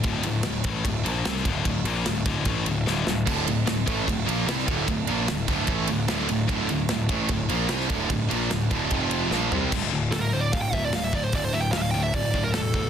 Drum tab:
CC |----------------|----------------|x---------------|----------------|
RD |x-x-x-x-x-x-x-x-|x-x-x-x-x-x-----|--x-x-x-x-x-x-x-|x-x-x-x-x-x-x-x-|
HH |----------------|----------------|----------------|----------------|
SD |----o-------oo--|----o-o-----o-o-|----o-------oo--|----o-o-----o---|
FT |----------------|----------------|----------------|----------------|
BD |o-----o-o-----o-|o-----o-o-------|o-----o-o-----o-|o-----o-o-------|

CC |----------------|----------------|x---------------|----------------|
RD |x-x-x-x-x-x-x-x-|x-x-x-x-x-x-----|----------------|----------------|
HH |----------------|----------------|----o---o---o---|o---o---o---o---|
SD |----o-------oo--|----o-------o---|----o-------o---|----o-------o---|
FT |----------------|--------------o-|----------------|----------------|
BD |o-----o-o-----o-|o-----o-o-------|o-------o-o---o-|o-------o-o---o-|